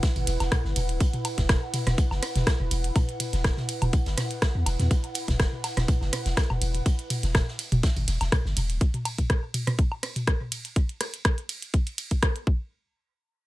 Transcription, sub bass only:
0, 0, Header, 1, 2, 480
1, 0, Start_track
1, 0, Tempo, 487805
1, 990, Time_signature, 4, 2, 24, 8
1, 13253, End_track
2, 0, Start_track
2, 0, Title_t, "Sub bass"
2, 0, Program_c, 0, 38
2, 157, Note_on_c, 0, 31, 88
2, 244, Note_off_c, 0, 31, 0
2, 269, Note_on_c, 0, 28, 107
2, 369, Note_off_c, 0, 28, 0
2, 397, Note_on_c, 0, 28, 93
2, 484, Note_off_c, 0, 28, 0
2, 637, Note_on_c, 0, 31, 100
2, 724, Note_off_c, 0, 31, 0
2, 748, Note_on_c, 0, 28, 90
2, 876, Note_on_c, 0, 26, 98
2, 890, Note_off_c, 0, 28, 0
2, 963, Note_off_c, 0, 26, 0
2, 1357, Note_on_c, 0, 28, 107
2, 1539, Note_off_c, 0, 28, 0
2, 1838, Note_on_c, 0, 26, 90
2, 1924, Note_off_c, 0, 26, 0
2, 2077, Note_on_c, 0, 30, 97
2, 2164, Note_off_c, 0, 30, 0
2, 2318, Note_on_c, 0, 28, 84
2, 2404, Note_off_c, 0, 28, 0
2, 2558, Note_on_c, 0, 28, 95
2, 2644, Note_off_c, 0, 28, 0
2, 2670, Note_on_c, 0, 28, 95
2, 2859, Note_off_c, 0, 28, 0
2, 3278, Note_on_c, 0, 28, 102
2, 3460, Note_off_c, 0, 28, 0
2, 3759, Note_on_c, 0, 26, 83
2, 3845, Note_off_c, 0, 26, 0
2, 3997, Note_on_c, 0, 31, 87
2, 4084, Note_off_c, 0, 31, 0
2, 4477, Note_on_c, 0, 40, 96
2, 4564, Note_off_c, 0, 40, 0
2, 4588, Note_on_c, 0, 28, 105
2, 4688, Note_off_c, 0, 28, 0
2, 4717, Note_on_c, 0, 40, 96
2, 4804, Note_off_c, 0, 40, 0
2, 5198, Note_on_c, 0, 28, 106
2, 5379, Note_off_c, 0, 28, 0
2, 5678, Note_on_c, 0, 26, 83
2, 5764, Note_off_c, 0, 26, 0
2, 5918, Note_on_c, 0, 30, 98
2, 6004, Note_off_c, 0, 30, 0
2, 6158, Note_on_c, 0, 28, 85
2, 6244, Note_off_c, 0, 28, 0
2, 6398, Note_on_c, 0, 28, 94
2, 6484, Note_off_c, 0, 28, 0
2, 6509, Note_on_c, 0, 28, 99
2, 6698, Note_off_c, 0, 28, 0
2, 7117, Note_on_c, 0, 28, 102
2, 7299, Note_off_c, 0, 28, 0
2, 7596, Note_on_c, 0, 26, 85
2, 7683, Note_off_c, 0, 26, 0
2, 7837, Note_on_c, 0, 31, 86
2, 7924, Note_off_c, 0, 31, 0
2, 7949, Note_on_c, 0, 28, 107
2, 8049, Note_off_c, 0, 28, 0
2, 8077, Note_on_c, 0, 28, 94
2, 8164, Note_off_c, 0, 28, 0
2, 8317, Note_on_c, 0, 31, 101
2, 8404, Note_off_c, 0, 31, 0
2, 8429, Note_on_c, 0, 28, 93
2, 8557, Note_on_c, 0, 26, 102
2, 8572, Note_off_c, 0, 28, 0
2, 8644, Note_off_c, 0, 26, 0
2, 13253, End_track
0, 0, End_of_file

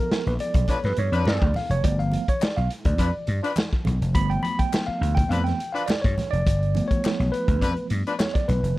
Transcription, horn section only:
0, 0, Header, 1, 2, 480
1, 0, Start_track
1, 0, Tempo, 578035
1, 1528, Time_signature, 4, 2, 24, 8
1, 7294, End_track
2, 0, Start_track
2, 0, Title_t, "Horn section"
2, 0, Program_c, 0, 61
2, 568, Note_on_c, 0, 53, 84
2, 571, Note_on_c, 0, 62, 76
2, 575, Note_on_c, 0, 71, 88
2, 650, Note_off_c, 0, 53, 0
2, 651, Note_off_c, 0, 62, 0
2, 654, Note_off_c, 0, 71, 0
2, 934, Note_on_c, 0, 62, 89
2, 935, Note_on_c, 0, 71, 97
2, 936, Note_on_c, 0, 53, 83
2, 1234, Note_off_c, 0, 62, 0
2, 1235, Note_off_c, 0, 53, 0
2, 1235, Note_off_c, 0, 71, 0
2, 2477, Note_on_c, 0, 53, 88
2, 2479, Note_on_c, 0, 62, 78
2, 2482, Note_on_c, 0, 71, 89
2, 2562, Note_off_c, 0, 53, 0
2, 2563, Note_off_c, 0, 62, 0
2, 2565, Note_off_c, 0, 71, 0
2, 2848, Note_on_c, 0, 53, 92
2, 2852, Note_on_c, 0, 62, 92
2, 2852, Note_on_c, 0, 71, 88
2, 2922, Note_off_c, 0, 53, 0
2, 2925, Note_off_c, 0, 62, 0
2, 2925, Note_off_c, 0, 71, 0
2, 4407, Note_on_c, 0, 53, 75
2, 4411, Note_on_c, 0, 71, 86
2, 4414, Note_on_c, 0, 62, 77
2, 4488, Note_off_c, 0, 53, 0
2, 4491, Note_off_c, 0, 71, 0
2, 4493, Note_off_c, 0, 62, 0
2, 4766, Note_on_c, 0, 53, 83
2, 4769, Note_on_c, 0, 71, 93
2, 4772, Note_on_c, 0, 62, 89
2, 4841, Note_off_c, 0, 53, 0
2, 4843, Note_off_c, 0, 71, 0
2, 4845, Note_off_c, 0, 62, 0
2, 6324, Note_on_c, 0, 62, 80
2, 6326, Note_on_c, 0, 53, 82
2, 6327, Note_on_c, 0, 71, 90
2, 6406, Note_off_c, 0, 62, 0
2, 6408, Note_off_c, 0, 53, 0
2, 6408, Note_off_c, 0, 71, 0
2, 6693, Note_on_c, 0, 53, 84
2, 6693, Note_on_c, 0, 62, 86
2, 6696, Note_on_c, 0, 71, 99
2, 6765, Note_off_c, 0, 53, 0
2, 6766, Note_off_c, 0, 62, 0
2, 6768, Note_off_c, 0, 71, 0
2, 7294, End_track
0, 0, End_of_file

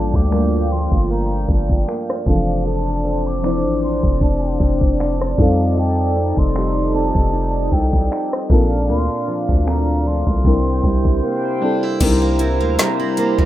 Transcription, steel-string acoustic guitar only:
0, 0, Header, 1, 2, 480
1, 0, Start_track
1, 0, Key_signature, -1, "major"
1, 0, Tempo, 779221
1, 1635, Time_signature, 4, 2, 24, 8
1, 8287, End_track
2, 0, Start_track
2, 0, Title_t, "Steel-string acoustic guitar"
2, 0, Program_c, 0, 25
2, 0, Note_on_c, 0, 43, 80
2, 0, Note_on_c, 0, 53, 57
2, 0, Note_on_c, 0, 62, 68
2, 196, Note_on_c, 0, 58, 62
2, 434, Note_off_c, 0, 53, 0
2, 436, Note_on_c, 0, 53, 58
2, 668, Note_off_c, 0, 58, 0
2, 676, Note_on_c, 0, 58, 61
2, 914, Note_off_c, 0, 53, 0
2, 916, Note_on_c, 0, 53, 63
2, 1149, Note_off_c, 0, 58, 0
2, 1156, Note_on_c, 0, 58, 62
2, 1394, Note_off_c, 0, 53, 0
2, 1397, Note_on_c, 0, 53, 79
2, 1447, Note_off_c, 0, 43, 0
2, 1448, Note_off_c, 0, 58, 0
2, 1634, Note_off_c, 0, 53, 0
2, 1636, Note_on_c, 0, 53, 77
2, 1640, Note_on_c, 0, 69, 65
2, 1875, Note_off_c, 0, 62, 0
2, 1876, Note_on_c, 0, 60, 60
2, 2115, Note_on_c, 0, 62, 65
2, 2353, Note_off_c, 0, 60, 0
2, 2355, Note_on_c, 0, 60, 60
2, 2588, Note_off_c, 0, 62, 0
2, 2595, Note_on_c, 0, 62, 65
2, 2832, Note_off_c, 0, 60, 0
2, 2834, Note_on_c, 0, 60, 66
2, 3069, Note_off_c, 0, 62, 0
2, 3076, Note_on_c, 0, 62, 62
2, 3313, Note_off_c, 0, 53, 0
2, 3315, Note_on_c, 0, 53, 87
2, 3368, Note_off_c, 0, 62, 0
2, 3553, Note_off_c, 0, 53, 0
2, 3555, Note_on_c, 0, 53, 80
2, 3557, Note_off_c, 0, 69, 0
2, 3559, Note_on_c, 0, 69, 67
2, 3792, Note_off_c, 0, 60, 0
2, 3795, Note_on_c, 0, 60, 59
2, 4035, Note_on_c, 0, 63, 66
2, 4269, Note_off_c, 0, 60, 0
2, 4276, Note_on_c, 0, 60, 61
2, 4507, Note_off_c, 0, 63, 0
2, 4515, Note_on_c, 0, 63, 70
2, 4749, Note_off_c, 0, 60, 0
2, 4756, Note_on_c, 0, 60, 66
2, 4988, Note_off_c, 0, 63, 0
2, 4996, Note_on_c, 0, 63, 66
2, 5236, Note_on_c, 0, 46, 85
2, 5287, Note_off_c, 0, 53, 0
2, 5288, Note_off_c, 0, 60, 0
2, 5288, Note_off_c, 0, 63, 0
2, 5289, Note_off_c, 0, 69, 0
2, 5468, Note_off_c, 0, 46, 0
2, 5475, Note_on_c, 0, 46, 82
2, 5479, Note_on_c, 0, 62, 70
2, 5715, Note_on_c, 0, 53, 60
2, 5955, Note_on_c, 0, 57, 66
2, 6188, Note_off_c, 0, 53, 0
2, 6195, Note_on_c, 0, 53, 62
2, 6432, Note_off_c, 0, 46, 0
2, 6435, Note_on_c, 0, 48, 87
2, 6487, Note_off_c, 0, 53, 0
2, 6487, Note_off_c, 0, 57, 0
2, 6489, Note_off_c, 0, 62, 0
2, 6675, Note_on_c, 0, 55, 65
2, 6915, Note_on_c, 0, 58, 64
2, 7156, Note_on_c, 0, 62, 66
2, 7286, Note_off_c, 0, 62, 0
2, 7286, Note_on_c, 0, 64, 57
2, 7389, Note_off_c, 0, 48, 0
2, 7396, Note_on_c, 0, 48, 79
2, 7448, Note_off_c, 0, 64, 0
2, 7523, Note_off_c, 0, 58, 0
2, 7526, Note_on_c, 0, 58, 60
2, 7636, Note_on_c, 0, 64, 64
2, 7762, Note_off_c, 0, 58, 0
2, 7765, Note_on_c, 0, 58, 59
2, 7873, Note_off_c, 0, 55, 0
2, 7876, Note_on_c, 0, 55, 66
2, 7998, Note_off_c, 0, 64, 0
2, 8005, Note_on_c, 0, 64, 64
2, 8115, Note_off_c, 0, 58, 0
2, 8117, Note_on_c, 0, 58, 67
2, 8243, Note_off_c, 0, 55, 0
2, 8246, Note_on_c, 0, 55, 64
2, 8287, Note_off_c, 0, 48, 0
2, 8287, Note_off_c, 0, 55, 0
2, 8287, Note_off_c, 0, 58, 0
2, 8287, Note_off_c, 0, 64, 0
2, 8287, End_track
0, 0, End_of_file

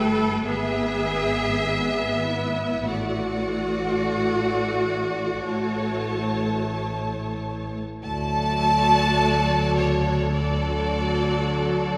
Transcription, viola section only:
0, 0, Header, 1, 2, 480
1, 0, Start_track
1, 0, Key_signature, 2, "major"
1, 0, Tempo, 1142857
1, 678, Tempo, 1271186
1, 1153, Time_signature, 4, 2, 24, 8
1, 1638, Tempo, 1293103
1, 3078, Tempo, 1156069
1, 4038, Tempo, 1094891
1, 4752, End_track
2, 0, Start_track
2, 0, Title_t, "Viola section"
2, 0, Program_c, 0, 48
2, 0, Note_on_c, 0, 57, 81
2, 189, Note_off_c, 0, 57, 0
2, 193, Note_on_c, 0, 59, 77
2, 671, Note_off_c, 0, 59, 0
2, 683, Note_on_c, 0, 59, 74
2, 1146, Note_off_c, 0, 59, 0
2, 1150, Note_on_c, 0, 57, 66
2, 2111, Note_off_c, 0, 57, 0
2, 2116, Note_on_c, 0, 57, 73
2, 2983, Note_off_c, 0, 57, 0
2, 3075, Note_on_c, 0, 66, 74
2, 3076, Note_on_c, 0, 54, 68
2, 4019, Note_off_c, 0, 54, 0
2, 4019, Note_off_c, 0, 66, 0
2, 4039, Note_on_c, 0, 66, 76
2, 4040, Note_on_c, 0, 54, 76
2, 4752, Note_off_c, 0, 54, 0
2, 4752, Note_off_c, 0, 66, 0
2, 4752, End_track
0, 0, End_of_file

